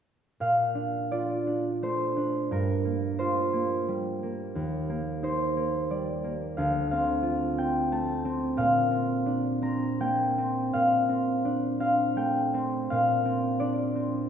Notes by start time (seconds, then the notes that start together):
0.40 A#2 F5
0.75 D4
1.12 F4 D5
1.47 D4
1.82 A3 C5
2.17 D4
2.51 G2 A#4
2.85 A#3
3.19 F4 C5
3.53 A#3
3.88 G3
4.23 A#3
4.55 D#2
4.90 A#3
5.23 D#4 C5
5.57 A#3
5.90 G3 D5
6.24 A#3
6.57 D2 F5
6.91 C4 F5
7.23 F4
7.58 C4 G5
7.92 A3 A5
8.25 C4
8.57 A#2 F5
8.91 C4
9.26 D4
9.62 C4 A#5
10.00 A#3 G5
10.38 C4
10.73 A#2 F5
11.09 C4
11.45 D4
11.80 C4 F5
12.16 A3 G5
12.54 C4
12.90 A#2 F5
13.25 C4
13.60 D4 D5
13.95 C4